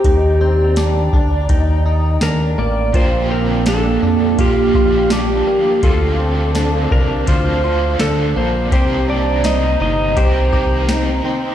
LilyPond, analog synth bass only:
\new Staff \with { instrumentName = "Analog synth bass" } { \clef bass \time 4/4 \key bes \major \tempo 4 = 83 ees,4. d,8 ees,4 ees,8 a,,8 | bes,,4. f,8 bes,,4. r8 | d,4. c,8 d,4 d,8 bes,,8 | c,4. g,,8 c,4. r8 | }